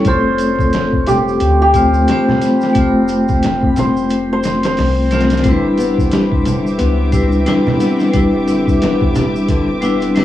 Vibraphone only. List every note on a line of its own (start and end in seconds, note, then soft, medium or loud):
0.02 1.69 A3 medium
0.02 1.70 C4 medium
0.07 1.71 F4 medium
0.07 1.73 A4 medium
1.74 2.04 A3 medium
1.74 2.05 C4 medium
1.74 2.05 F4 medium
1.74 2.06 C5 medium
2.08 2.72 A3 medium
2.08 2.72 C4 medium
2.08 2.73 F4 medium
2.08 2.74 C5 loud
2.73 4.39 A3 medium
2.73 4.40 C4 medium
2.78 4.42 F4 medium
2.78 4.43 C5 medium
5.11 5.41 A3 medium
5.11 5.42 C4 medium
5.11 5.42 F4 medium
5.11 5.43 C5 medium
5.43 7.09 G3 medium
5.43 7.10 D4 medium
5.48 7.12 E4 medium
5.48 7.13 B4 medium
7.12 7.43 G3 medium
7.12 7.44 D4 medium
7.12 7.44 E4 medium
7.12 7.45 B4 medium
7.46 8.10 G3 medium
7.46 8.11 D4 medium
7.46 8.12 E4 medium
7.46 8.13 B4 medium
8.12 9.78 G3 medium
8.12 9.80 D4 medium
8.17 9.81 E4 medium
8.17 9.82 B4 medium
9.82 10.13 G3 medium
9.82 10.13 D4 medium
9.82 10.14 E4 medium
9.82 10.15 B4 medium
10.15 10.25 G3 medium
10.15 10.25 D4 medium
10.15 10.25 E4 medium
10.15 10.25 B4 medium